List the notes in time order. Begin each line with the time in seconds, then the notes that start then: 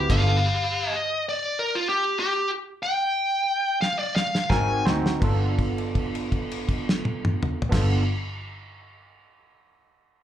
Already playing: G4
0.09 G1 B3 D4 F4 A4 F5, kick, closed hi-hat, crash
0.90 D#5
1.29 D5
1.59 A#4
1.75 F4
1.89 G4
2.19 G4
2.83 G5
3.81 F5, snare
3.99 D5
4.16 F5, snare
4.35 snare
4.50 G#1 C4 D#4 F#4 A#4 G#5, kick, snare
4.85 D2 C4 D#4 F#4 C5, snare
5.06 snare
5.20 G1 B3 D4 F4, kick, crash
5.24 A4
5.59 kick, crash
5.78 crash
5.95 kick, crash
6.15 crash
6.32 kick, crash
6.51 crash
6.69 kick, crash
6.89 snare
7.05 high tom
7.25 mid tom
7.43 mid tom
7.62 floor tom
7.69 G1 B3 D4 F4 A4, kick, crash
7.73 snare